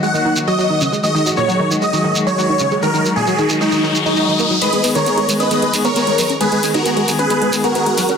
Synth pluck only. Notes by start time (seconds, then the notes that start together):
0.03 G#3
0.14 D#3
0.25 D#3
0.47 F#3
0.59 F#3
0.70 D#3
0.81 C#3
0.92 G#3
1.03 D#3
1.15 D#3
1.26 F#3
1.37 A#2
1.48 F#3
1.59 D#3
1.71 D#3
1.82 G#3
1.93 D#3
2.04 D#3
2.27 F#3
2.38 F#3
2.49 D#3
2.60 C#3
2.71 G#3
2.83 D#3
2.94 D#3
3.05 F#3
3.16 A#2
3.27 F#3
3.39 D#3
3.50 D#3
3.61 G#3
3.72 D#3
3.83 D#3
4.06 D#3
4.17 D#4
4.28 D#3
4.39 A#3
4.50 F#3
4.62 G#3
4.73 G#3
4.84 B3
4.95 D#3
5.06 B3
5.18 G#3
5.29 G#3
5.40 C#4
5.51 G#3
5.62 G#3
5.85 B3
5.96 B3
6.07 G#3
6.19 F#3
6.30 C#4
6.41 G#3
6.52 G#3
6.63 B3
6.75 D#3
6.86 B3
6.97 G#3
7.08 G#3
7.19 C#4
7.30 G#3
7.42 G#3
7.64 B3
7.75 B3
7.86 G#3
7.98 F#3
8.09 C#4